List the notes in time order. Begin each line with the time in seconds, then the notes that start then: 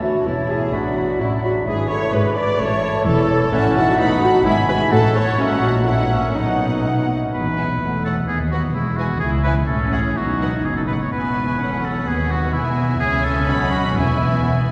Already playing: A1 A2 E5
0.01 E3 D4 F#4 C#5 E5 A5
0.25 E1 E2 E3 C#4 E4 C#5 E5 A5
0.48 E3 E4 G#4 C#5 E5 A5
0.71 A1 A2 F#3 D4 F#4 D5 B5
0.95 F#3 D5 F#5 B5
1.18 A1 A2 F#3 C#4 E4 D5 B5
1.41 F#3 D4 F#4 D5 F#5 B5
1.65 G#1 G#2 E3 E4 G#4 B4 D5 B5
1.87 E3 A4 C#5 D5 E5 B5
1.91 D5
2.12 G#1 G#2 E3 G#4 B4 D5 B5
2.36 E3 B4 D5 E5 B5
2.59 A1 A2 E3 A4 C#5 A5
2.81 E3 C#5 E5 A5
3.05 E1 E2 E3 E4 A4 C#5 A5
3.29 E3 C#5 E5 A5
3.52 A1 A2 E3 A3 C#4 E5 F#5 A5
3.75 D#4 F#4 E5 F#5 A5
3.98 A1 A2 F#3 B3 D#4 F#5 B5
4.22 D#4 F#4 F#5 B5
4.45 G#1 G#2 E3 B3 E4 E5 G#5 B5
4.68 G#4 B4 E5 G#5 B5
4.91 A1 A2 F#3 F#4 A4 C#5 F#5 A5
5.14 A4 C#5 F#5 A5
5.38 A#1 A#2 F#3 A#3 C#4 D#5 E5 F#5
5.62 D#4 F#4
5.86 F#3 C#4 E4 C#5 E5 F#5
6.00 B3 D#4
6.11 A#3 C#4
6.35 B1 B2 F#3 B3 D#4 D#5 F#5
7.33 E1 E2 B4
7.58 B3 E5 G#5
7.81 E1 E2 A3
8.05 A3 A4 C#5 F#5
8.28 D#2 B3 G#4
8.52 B3 F#4 B4 F#5
8.74 E1 E2 G#3 E4
8.96 E4 F#4 B4 G#5
9.19 C#2 E4 G#4
9.43 E4 B4 C#5 G#5
9.67 A1 A2 C#4 A4
9.92 E4 G#4 C#5 F#5
10.16 B1 B2 D#4 F#4
10.42 D#4 B4 F#5
10.64 F#1 B2 G#4
10.77 A4
10.87 A2 D#4 B4
10.93 F#5
11.01 C#5
11.12 E1 E2 B3 E4 B4 G#5
11.61 C#4 A4 F#5
11.85 A4
12.07 D#2 B3 G#4 B4
12.31 F#4
12.53 E1 E2 B3 E4 E5 G#5
12.99 C#2 C#3 C#4 G#4 E5 G#5
13.24 A4
13.47 B1 B2 D#4 F#5 B5
13.71 F#4
13.96 E1 E2 B3 E4 E5 G#5